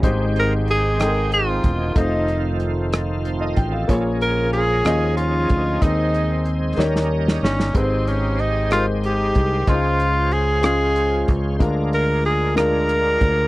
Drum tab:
HH |x-x-x-x-x-x-|x-x-x-x-x-x-|x-x-x-x-x-x-|x-x-x-------|
SD |------r-----|------r-----|------r-----|------oo-ooo|
BD |o---------o-|o---------o-|o---------o-|o-----------|

HH |x-x-x-x-x-x-|x-x-x-x-x-x-|x-x-x-x-x-x-|
SD |------r-----|------r-----|------r-----|
BD |o---------o-|o---------o-|o---------o-|